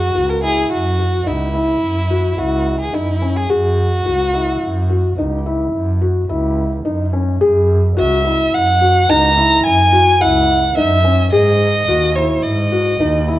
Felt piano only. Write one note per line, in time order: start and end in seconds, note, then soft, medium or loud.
0.15 0.34 F#4 medium
0.42 0.81 E4 medium
0.99 1.18 F#4 medium
1.26 1.46 D#4 medium
1.54 1.93 E4 medium
2.10 2.30 F#4 medium
2.38 2.77 E4 medium
2.93 3.13 D#4 medium
3.22 3.41 C#4 medium
3.49 3.89 G#4 medium
4.06 4.25 F#4 medium
4.34 4.73 E4 medium
4.90 5.09 F#4 medium
5.18 5.38 D#4 medium
5.46 5.85 E4 medium
6.01 6.21 F#4 medium
6.29 6.69 E4 medium
6.85 7.05 D#4 medium
7.13 7.33 C#4 medium
7.41 7.80 G#4 medium
7.97 8.17 F#4 medium
8.25 8.64 E4 medium
8.81 9.01 F#4 medium
9.09 9.29 D#4 medium
9.37 9.76 E4 medium
9.92 10.12 F#4 medium
10.21 10.60 E4 medium
10.77 10.96 D#4 medium
11.04 11.24 C#4 medium
11.32 11.72 G#4 medium
11.88 12.08 F#4 medium
12.16 12.55 E4 medium
12.72 12.92 F#4 medium
13.00 13.20 D#4 medium
13.28 13.39 E4 medium